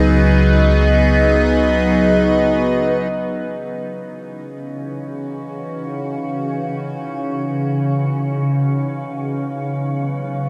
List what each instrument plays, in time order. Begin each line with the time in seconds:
Already playing: synth drone C#2 C#3, ambient pad F#3 B3 D#4 G#4 B4, glass harmonica D#5
3.13 synth drone C#3, ambient pad E3
3.21 ambient pad C#4
4.21 ambient pad F#4
8.97 ambient pad C#3
9.35 ambient pad B3
9.46 ambient pad F#3
10.40 ambient pad G#4